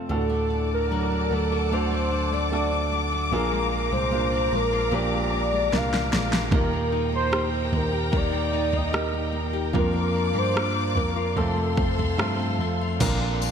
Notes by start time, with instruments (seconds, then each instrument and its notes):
Already playing: grand piano F2 C3 A3 C4 F4 A4, nylon-string guitar F2 A3 C4
0.09 tine electric piano D2, grand piano A2 A3 D4 F#4 A4, nylon-string guitar D3, string section D5 F#5 A5 D6
0.14 soft synth lead A4
0.30 nylon-string guitar A3
0.50 nylon-string guitar D4
0.74 soft synth lead A#4
0.91 grand piano F#3 D4 F#4, nylon-string guitar F#4
1.12 nylon-string guitar D4
1.31 tine electric piano D2, nylon-string guitar A3, soft synth lead A4
1.52 nylon-string guitar F#4
1.72 nylon-string guitar D3, grand piano A3 D4 F#4 C5, soft synth lead C5
1.91 nylon-string guitar A3
2.11 nylon-string guitar D4
2.32 nylon-string guitar A3, soft synth lead D5
2.52 grand piano A3 D4 F#4 A4, nylon-string guitar F#4
2.73 nylon-string guitar D4
2.92 nylon-string guitar A3
3.12 nylon-string guitar F#4
3.31 tine electric piano A#1, nylon-string guitar A#2, grand piano A#3 D4 F4 G#4, string section A#4 F5 A#5, soft synth lead A#4
3.52 nylon-string guitar G#3
3.71 nylon-string guitar D4
3.92 tine electric piano C2, nylon-string guitar G#3, soft synth lead C5
4.11 grand piano A#3 D4 F4 A#4, nylon-string guitar F4
4.32 nylon-string guitar D4
4.52 tine electric piano A#1, nylon-string guitar G#3, soft synth lead A#4
4.73 nylon-string guitar F4
4.91 tine electric piano A#1, nylon-string guitar A#2, grand piano A#3 D4 F4 G4, soft synth lead D5
5.12 nylon-string guitar G#3
5.33 nylon-string guitar D4
5.52 nylon-string guitar G#3
5.72 tine electric piano C2, grand piano A#3 D4 F4 A#4, nylon-string guitar F4, snare
5.76 soft synth lead F5
5.91 nylon-string guitar D4, snare
6.12 tine electric piano A#1, nylon-string guitar G#3, snare
6.32 nylon-string guitar F4, snare
6.51 tine electric piano D#2, grand piano A#2 A#3 D#4 G4 A#4, nylon-string guitar D#3, string section D#4 G5 A#5, soft synth lead A#4, kick, floor tom
6.73 nylon-string guitar A#3
6.92 nylon-string guitar D#4
7.12 nylon-string guitar A#3, soft synth lead C5
7.32 grand piano A#3 D#4 G4 C5, nylon-string guitar G4, cross-stick
7.53 nylon-string guitar D#4
7.67 soft synth lead C5
7.72 tine electric piano D#2, nylon-string guitar A#3, soft synth lead A#4, floor tom
7.92 nylon-string guitar G4
8.11 nylon-string guitar D#3, grand piano A#3 D#4 G4 A#4, kick, floor tom
8.16 soft synth lead D5
8.33 nylon-string guitar A#3
8.53 nylon-string guitar D#4
8.72 nylon-string guitar A#3, floor tom
8.76 soft synth lead D#5
8.93 grand piano A#3 D#4 G4 A#4, nylon-string guitar G4, cross-stick
9.13 nylon-string guitar D#4
9.32 nylon-string guitar A#3
9.53 nylon-string guitar G4
9.73 tine electric piano F2, nylon-string guitar F3, grand piano F3 A#3 D4 F4 A#4, string section D5 F5 D6, floor tom
9.78 soft synth lead A#4
9.93 nylon-string guitar A#3
10.14 nylon-string guitar D4
10.33 tine electric piano G2, nylon-string guitar A#3
10.38 soft synth lead C5
10.54 grand piano A#3 D4 F4 A#4, nylon-string guitar F4, cross-stick
10.75 nylon-string guitar D4
10.95 tine electric piano F2, nylon-string guitar A#3, soft synth lead A#4, floor tom
11.16 nylon-string guitar F4
11.36 tine electric piano F2, nylon-string guitar F2, grand piano C3 A3 C4 F4 A4, string section A4 C5 F5 C6, soft synth lead A4, floor tom
11.56 nylon-string guitar A3
11.77 nylon-string guitar C4, kick
11.98 nylon-string guitar A3, floor tom
12.18 tine electric piano G2, grand piano A3 C4 F4 A4, nylon-string guitar F4, cross-stick
12.40 nylon-string guitar C4
12.59 tine electric piano F2, nylon-string guitar A3
12.81 nylon-string guitar F4
12.99 tine electric piano A#1, grand piano A#2 F3 C4 D4 F4 A#4, nylon-string guitar A#2 F4, string section A#4 D5 F5 C6, kick, floor tom, crash, tambourine
13.42 nylon-string guitar A#3, tambourine